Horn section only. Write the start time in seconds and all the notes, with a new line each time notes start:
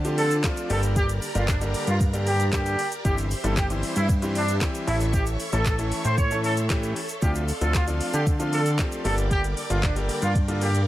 0.18 A4
0.70 A4
0.96 G4
1.35 F4
1.48 D4
1.87 F4
2.27 G4
2.53 G4
3.05 G4
3.44 A4
3.57 G4
3.96 E4
4.35 D4
4.88 E4
5.13 G4
5.52 A4
5.66 A4
6.05 C5
6.18 C#5
6.44 A4
7.22 G4
7.61 A4
7.74 F4
8.13 G4
8.52 A4
9.05 A4
9.31 G4
9.70 F4
9.83 D4
10.22 F4
10.61 G4